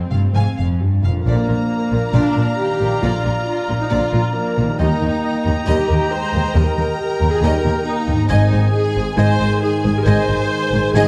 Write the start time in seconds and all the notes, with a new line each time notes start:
Already playing: F2 C4 F4 G#4 C5
0.11 F1 G2 F5
0.34 F1 G#2 F5 G#5
0.57 F1 F2 F5
0.81 G2
1.03 F1 F2 F5
1.08 A#2
1.12 D4
1.16 F4
1.21 A#4
1.25 A#1 A#2 D3 F3 A#3 D5 F5 A#5
1.48 A#1 A#2 A#4
1.91 A#1 A#2 A#4
2.13 A#1 A#2 D3 F3 A#3 D4 D5
2.35 A#1 A#2 A#4
2.59 D#3 G4
2.80 A#1 A#2 A#4
3.02 A#1 A#2 D3 F3 D4 F4 D5
3.25 A#1 A#2 A#4
3.46 D4 F4
3.68 A#1 A#2 A#4
3.80 C4 D#4
3.90 A#1 A#2 D3 F3 D4 F4 D5
4.12 A#1 A#2 A#4
4.34 F3 A#3
4.56 A#1 A#2 A#4
4.61 D#3
4.66 D#4
4.70 G4
4.75 A#3 A#4 D#5
4.79 D#2 D#3 G3 D#4 D#5 G5 A#5
5.01 D#2 A#4
5.44 D#2 A#4
5.66 D#2 D#3 G3 D#4 G4 D#5
5.87 D#2 A#4
6.09 G#3 C5
6.33 D#2 A#4
6.55 D#2 D#3 G3 G4 A#4 D#5
6.77 D#2 A#4
6.98 G4 A#4
7.21 D#2 A#4
7.31 F4 G#4
7.42 D#2 D#3 G3 G4 A#4 D#5
7.64 D#2 A#4
7.86 A#3 D#4
8.08 D#2 G#2 A#4
8.16 D#4
8.21 G#4
8.25 C5 D#5 G#5
8.30 G#1 G#2 D#3 G#3 C4 D#4 D#5 G#5
8.51 G#1 G#2 C5
8.74 D#4 G#4
8.95 G#1 G#2 C5
9.17 G#1 G#2 G#4 C5 D#5 G#5
9.39 G#1 G#2 C5
9.62 D#4 G#4
9.83 G#1 G#2 C5
9.96 G4 A#4
10.05 G#1 G#2 G#4 C5 D#5 G#5
10.29 G#1 G#2 C5
10.73 G#1 G#2 C5
10.94 G#1 G#2 D#4 G#4 D#5 G#5